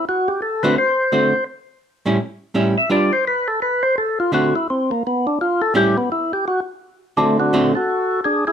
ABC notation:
X:1
M:4/4
L:1/8
Q:"Swing" 1/4=169
K:Dmix
V:1 name="Tonewheel organ"
F G A B c4 | z6 z e | d c B A B c A =F | F E C _B, =B, D =F A |
G B, E G F z3 | [A,D] [DF]2 [FA]3 [D^G] [EG] |]
V:2 name="Hollow-body jazz guitar"
z3 [D,A,CF] z2 [D,A,CF] z | z3 [A,,G,^CE] z2 [A,,G,CE] z | [G,D=FB] z6 z | [D,A,CF] z6 z |
[A,,G,^CE] z6 z | [D,A,CF]2 [D,A,CF] z4 z |]